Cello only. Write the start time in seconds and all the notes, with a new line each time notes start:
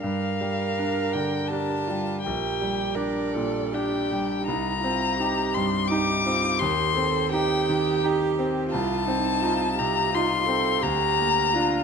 0.02 A#4
1.50 G4
1.88 F4
2.24 G4
2.95 A#4
3.33 A4
3.73 G4
4.44 D#4
4.82 F4
5.16 G4
5.90 D#4
6.25 F4
6.60 G4
6.95 A4
7.30 G4
8.71 F4
9.06 D#4
9.42 F4
9.77 G4
10.11 F4
10.46 A4
10.82 G4
11.54 F4